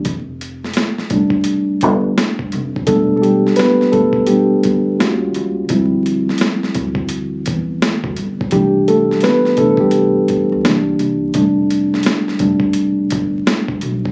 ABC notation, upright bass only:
X:1
M:4/4
L:1/16
Q:"Swing 16ths" 1/4=85
K:Flyd
V:1 name="Upright bass" clef=bass
F,,,4 z2 F,,,4 G,,,2 z2 F,,,2 | E,,,4 z2 E,,,4 G,,,2 _E,,2 E,,2 | D,,4 z2 D,,4 E,,3 D,, G,,,2 | C,,4 z2 C,,4 z D,, C,,2 C,,2 |
F,,,4 z2 F,,,4 G,,,2 z2 B,,,2 |]